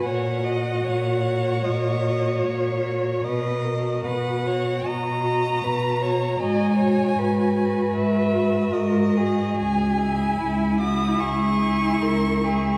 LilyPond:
<<
  \new Staff \with { instrumentName = "Violin" } { \time 4/4 \key b \major \tempo 4 = 75 fis''2 dis''4 cis''4 | dis''4 fis''4 ais''2 | gis''2 e''4 dis''4 | gis''4. dis'''8 cis'''2 | }
  \new Staff \with { instrumentName = "Violin" } { \time 4/4 \key b \major cis''8 dis''8 cis''2. | b'8 ais'8 b'8 cis''8 dis''4 b'8 cis''8 | dis''8 cis''8 b'2 ais'8 gis'8~ | gis'4 e'8 fis'8 gis'4 ais'8 gis'8 | }
  \new Staff \with { instrumentName = "Viola" } { \time 4/4 \key b \major fis'8 fis'4 fis'4 fis'4 fis'8 | r8 fis'4 fis'4 fis'4 fis'8 | fis'8 fis'4 fis'4 fis'4 fis'8 | r8 e'4 e'4 e'4 e'8 | }
  \new Staff \with { instrumentName = "Cello" } { \clef bass \time 4/4 \key b \major ais,4 ais,4 ais,4 ais,4 | b,4 b,4 b,4 b,4 | gis,4 gis,4 gis,4 gis,4 | cis,4 cis,4 cis,4 cis,4 | }
>>